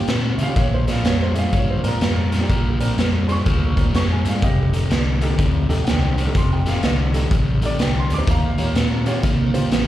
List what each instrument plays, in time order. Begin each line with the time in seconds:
0.07 fingered electric bass A#2, overdriven electric guitar D#3 C4, snare, closed hi-hat
0.37 fingered electric bass C#3, overdriven electric guitar D#3 C4, upright piano F4 G4 E5, closed hi-hat
0.43 upright piano F5
0.48 upright piano C#4 F4 G4
0.56 fingered electric bass A#1, overdriven electric guitar A#2 F3, upright piano C#5, kick, closed hi-hat
0.74 upright piano C5
0.87 overdriven electric guitar A#2 F3, upright piano C4 D4 G#4 F5, snare, closed hi-hat
1.04 fingered electric bass F2, overdriven electric guitar A#2 G3, upright piano C#5, snare, closed hi-hat
1.23 upright piano C5
1.34 overdriven electric guitar A#2 G3, upright piano C4 D4 G#4 E5, closed hi-hat
1.39 upright piano F5
1.53 fingered electric bass G2, overdriven electric guitar A#2 F3, upright piano C#5, kick, closed hi-hat
1.71 upright piano C5
1.83 fingered electric bass G#2, overdriven electric guitar A#2 F3, upright piano C4 D4 A#4, closed hi-hat
1.87 upright piano F4 A#4
2.01 fingered electric bass F2, overdriven electric guitar A#2 G3, snare, closed hi-hat
2.32 overdriven electric guitar A#2 G3, upright piano D4 F4, snare, closed hi-hat
2.40 upright piano C4 D4 G4
2.49 fingered electric bass A#1, overdriven electric guitar A#2 F3, kick, closed hi-hat
2.80 overdriven electric guitar A#2 F3, upright piano C4 D4 A#4, closed hi-hat
2.98 fingered electric bass F2, overdriven electric guitar A#2 G3, snare, closed hi-hat
3.28 overdriven electric guitar A#2 G3, upright piano C4 D4 G#4 C6, closed hi-hat
3.32 upright piano C#6
3.46 fingered electric bass D2, overdriven electric guitar A#2 F3, kick, snare, closed hi-hat
3.76 overdriven electric guitar A#2 F3, upright piano C4 D4 A#4, kick, closed hi-hat
3.93 fingered electric bass F2, overdriven electric guitar A#2 G3, upright piano C#6, snare, closed hi-hat
4.12 upright piano G#5
4.25 fingered electric bass G#2, overdriven electric guitar A#2 G3, upright piano D4 G4 F5, closed hi-hat
4.34 upright piano C4 D4 G#4
4.42 fingered electric bass F1, overdriven electric guitar F2 C3, upright piano G4 D#5, kick, closed hi-hat
4.73 overdriven electric guitar F2 C3, upright piano D#4 G4 A4, closed hi-hat
4.90 fingered electric bass C2, overdriven electric guitar F2 D3, snare, closed hi-hat
5.21 overdriven electric guitar F2 D3, upright piano D#4 G4 A4, closed hi-hat
5.37 fingered electric bass D2, overdriven electric guitar F2 C3, kick, closed hi-hat
5.69 fingered electric bass D#2, overdriven electric guitar F2 C3, upright piano D#4 G4 A4, closed hi-hat
5.84 fingered electric bass C2, overdriven electric guitar F2 D3, upright piano F#5, snare, closed hi-hat
5.89 upright piano G5
6.17 overdriven electric guitar F2 D3, upright piano G4 C5, closed hi-hat
6.27 upright piano D#4 G4 A4
6.34 fingered electric bass F1, overdriven electric guitar F2 C3, upright piano C6, kick, closed hi-hat
6.53 upright piano G5
6.66 overdriven electric guitar F2 C3, upright piano D#4 G4 A4 F5, snare, closed hi-hat
6.83 fingered electric bass C2, overdriven electric guitar F2 D3, upright piano D#5, snare, closed hi-hat
7.14 overdriven electric guitar F2 D3, upright piano D#4 G4 A4, closed hi-hat
7.31 fingered electric bass A1, overdriven electric guitar F2 C3, kick, closed hi-hat
7.62 overdriven electric guitar F2 C3, upright piano D#4 G4 A4 D5, closed hi-hat
7.79 fingered electric bass C2, overdriven electric guitar F2 D3, upright piano G5, snare, closed hi-hat
7.99 upright piano C6
8.10 fingered electric bass D#2, overdriven electric guitar F2 D3, upright piano G4 A4, closed hi-hat
8.14 upright piano D6
8.18 upright piano D#4 G4 C5
8.27 fingered electric bass D#2, overdriven electric guitar D#3 A#3, upright piano F5 A#5, kick, closed hi-hat
8.58 overdriven electric guitar D#3 A#3, upright piano F4 G4 C#5, closed hi-hat
8.75 fingered electric bass A#2, overdriven electric guitar D#3 C4, snare, closed hi-hat
9.06 overdriven electric guitar D#3 C4, upright piano F4 G4 C#5, closed hi-hat
9.23 fingered electric bass C3, overdriven electric guitar D#3 A#3, kick, snare, closed hi-hat
9.54 fingered electric bass C#3, overdriven electric guitar D#3 A#3, upright piano F4 G4 C5, closed hi-hat
9.71 fingered electric bass A1, overdriven electric guitar D#3 C4, snare, closed hi-hat